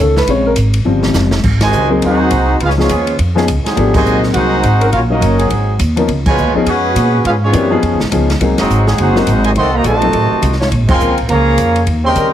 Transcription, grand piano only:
0.00 0.14 D#3 medium
0.00 0.15 A3 soft
0.00 0.15 C#4 medium
0.00 0.17 A4 medium
0.18 0.28 B4 medium
0.28 0.49 C#3 medium
0.28 0.50 G#3 medium
0.28 0.50 C4 medium
0.28 0.46 C#5 medium
0.47 0.53 A#4 medium
0.85 1.30 C#3 soft
0.85 1.30 F3 soft
0.85 1.30 G3 soft
0.85 1.30 C4 medium
1.90 2.29 F#3 medium
1.90 2.29 A#3 medium
1.90 2.29 C4 medium
1.90 2.29 D#4 medium
1.90 2.29 G#4 medium
2.77 2.88 F3 medium
2.77 2.88 B3 medium
2.77 2.88 C#4 medium
2.77 2.89 D#4 medium
2.77 2.89 G#4 medium
3.35 3.46 F3 medium
3.35 3.46 B3 medium
3.35 3.47 C#4 medium
3.35 3.47 D#4 medium
3.35 3.47 G#4 medium
3.76 3.92 F3 medium
3.76 3.92 A3 medium
3.76 3.92 B3 medium
3.76 3.93 D4 medium
3.76 3.93 G4 medium
3.95 4.57 F#3 medium
3.95 4.57 A#3 medium
3.95 4.57 C4 medium
3.95 4.58 D#4 medium
3.95 4.58 G#4 medium
5.10 5.48 F#3 medium
5.10 5.48 A#3 medium
5.10 5.48 C#4 medium
5.10 5.48 D#4 medium
5.10 5.49 F5 medium
5.96 6.07 F3 medium
5.96 6.07 B3 medium
5.96 6.08 C#4 medium
5.96 6.08 D#4 medium
5.96 6.08 A#4 medium
6.55 6.65 F3 medium
6.55 6.65 B3 medium
6.55 6.65 C#4 medium
6.55 6.66 D#4 medium
6.55 6.66 G#4 medium
7.52 7.69 E3 medium
7.52 7.69 A#3 medium
7.52 7.69 C4 medium
7.52 7.70 D4 medium
7.52 7.70 G4 medium
7.70 7.96 F3 medium
7.70 7.96 B3 medium
7.70 7.96 C#4 medium
7.70 7.97 D#4 medium
7.70 7.97 G#4 loud
8.12 8.27 F3 medium
8.12 8.27 B3 medium
8.12 8.28 C#4 medium
8.12 8.28 D#4 medium
8.12 8.28 G#4 medium
8.41 8.56 F#3 medium
8.41 8.56 A#3 medium
8.41 8.57 C4 medium
8.41 8.57 D#4 medium
8.41 8.57 G#4 medium
9.15 9.25 F#3 medium
9.15 9.26 A#3 medium
9.15 9.26 C4 medium
9.15 9.26 D#4 medium
9.15 9.26 F#4 loud
10.02 10.12 F#3 medium
10.02 10.12 C4 medium
10.02 10.13 D#4 medium
10.02 10.13 F4 medium
10.02 10.13 A4 medium

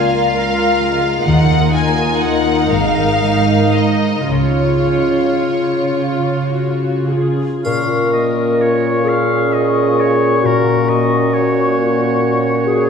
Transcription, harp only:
0.00 1.29 C#3 soft
0.00 0.20 G#3 soft
0.00 2.74 A#3 soft
0.00 0.35 F4 soft
0.00 1.30 D5 soft
0.37 1.30 F4 soft
0.80 1.30 G#3 soft
1.27 2.74 D#3 soft
1.74 2.21 D#4 soft
2.22 3.73 D#4 soft
2.22 4.33 D#5 soft
2.71 4.33 G#2 soft
3.21 4.85 G#3 soft
3.74 4.33 D#4 soft
3.74 4.33 C5 soft
4.30 7.70 C#3 soft
4.87 7.70 G#3 soft
5.41 6.50 F4 soft
5.95 8.59 C#5 soft
6.51 9.98 F4 soft
7.11 11.01 C#4 soft
7.66 10.43 A#2 soft
8.14 10.88 A#3 soft
8.60 9.51 C#5 soft
9.06 11.77 A#4 soft
9.52 11.32 C#5 soft
9.99 10.48 F4 soft
10.44 12.90 A#2 soft
10.89 12.90 A#3 soft
11.34 12.22 C#5 soft
11.78 12.90 A#4 soft
12.23 12.90 C#5 soft
12.69 12.90 F#4 soft

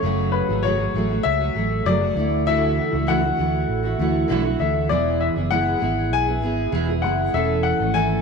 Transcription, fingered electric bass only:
0.03 0.40 F#1 medium
0.49 0.86 G#1 medium
0.94 1.19 A1 medium
1.25 1.50 C#2 medium
1.55 1.80 A1 medium
1.85 2.10 F#1 medium
2.16 2.78 D2 medium
2.93 3.30 C#2 medium
3.39 3.63 D2 medium
3.69 3.94 A1 medium
3.99 4.24 D2 medium
4.30 4.54 B1 medium
4.60 4.92 D2 medium
4.90 5.28 E1 medium
5.36 5.74 F#1 medium
5.82 6.12 G#1 medium
6.12 6.42 B1 medium
6.42 6.67 G#1 medium
6.72 7.04 E1 medium
7.04 7.28 F#1 medium
7.34 7.71 E1 medium
7.80 8.17 G#1 medium

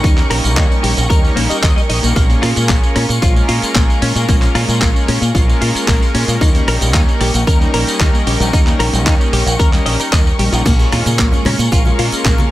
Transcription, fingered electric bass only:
0.04 0.21 D#2 loud
0.31 0.39 A#1 medium
0.44 0.57 A#1 medium
0.57 0.66 D#2 medium
0.84 0.92 A#1 medium
0.97 1.06 A#1 loud
1.10 1.27 D#2 loud
1.37 1.45 A#1 medium
1.50 muted fingered electric bass stroke soft
1.63 1.72 D#2 loud
1.90 1.98 A#1 medium
2.03 2.12 A#1 medium
2.16 2.33 A#1 loud
2.43 2.52 A#2 medium
2.56 2.71 A#2 medium
2.69 2.78 A#1 medium
2.96 3.05 A#2 loud
3.09 3.18 A#2 loud
3.23 3.40 A#1 loud
3.49 3.58 A#2 medium
3.62 muted fingered electric bass stroke soft
3.75 3.84 A#1 medium
4.02 4.11 A#2 medium
4.15 4.24 A#2 loud
4.29 4.46 A#1 loud
4.55 4.64 A#2 medium
4.68 4.83 A#2 medium
4.82 4.90 A#1 loud
5.08 5.17 A#2 medium
5.21 5.30 A#2 loud
5.35 5.52 A#1 loud
5.61 5.70 A#2 medium
5.75 muted fingered electric bass stroke soft
5.88 5.97 A#1 medium
6.15 6.23 A#2 medium
6.28 6.36 A#2 loud
6.41 6.58 D#2 loud
6.67 6.76 A#1 medium
6.81 6.94 A#1 medium
6.94 7.03 D#2 loud
7.21 7.29 A#1 loud
7.34 7.43 A#1 medium
7.47 7.64 D#2 loud
7.74 7.82 A#1 medium
8.00 8.09 D#2 medium
8.27 8.35 A#1 medium
8.40 8.49 A#1 loud
8.53 8.71 D#2 loud
8.80 8.89 A#1 loud
8.93 9.06 A#1 medium
9.06 9.15 D#2 medium
9.33 9.42 A#1 medium
9.46 9.55 A#1 loud
9.59 9.77 D#2 loud
9.86 9.95 A#1 medium
10.12 10.30 D#2 medium
10.39 10.48 A#1 medium
10.52 10.61 A#1 loud
10.66 10.83 A#1 loud
10.92 11.01 A#2 medium
11.06 11.20 A#2 medium
11.19 11.28 A#1 medium
11.45 11.54 A#2 medium
11.59 11.67 A#2 loud
11.72 11.89 A#1 loud
11.98 12.07 A#2 medium
12.12 muted fingered electric bass stroke soft
12.25 12.34 A#1 medium

